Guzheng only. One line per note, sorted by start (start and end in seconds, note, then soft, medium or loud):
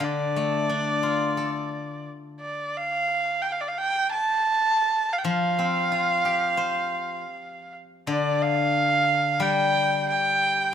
0.00 2.06 D3 medium
0.36 1.72 A3 soft
0.69 2.07 D4 soft
1.03 2.42 F4 soft
1.37 2.76 A4 soft
5.25 7.23 F3 medium
5.59 6.90 C4 soft
5.92 7.23 F4 soft
6.25 7.56 G4 soft
6.57 7.89 C5 soft
8.07 10.07 D3 medium
9.40 10.74 G3 medium